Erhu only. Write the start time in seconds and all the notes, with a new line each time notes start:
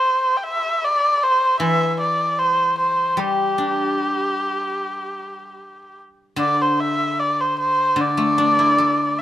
Already playing: C5
0.37 G5
0.43 E5
0.84 D5
1.23 C5
1.61 E5
2.01 D5
2.39 C5
2.79 C5
3.20 G4
6.40 D5
6.62 C5
6.80 E5
7.19 D5
7.40 C5
7.59 C5
8.00 D5
9.18 E5